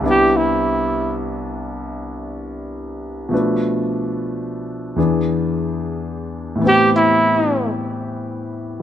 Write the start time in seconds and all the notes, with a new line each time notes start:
0.00 C2 C3 B3 D4
0.06 E4
0.10 G4
0.37 E4
3.29 B2 F3 A3
3.33 D4 B4
4.96 E2 E3 B3 D4 G#4
6.55 A2 E3
6.61 B3 C4
6.67 G4
6.96 E4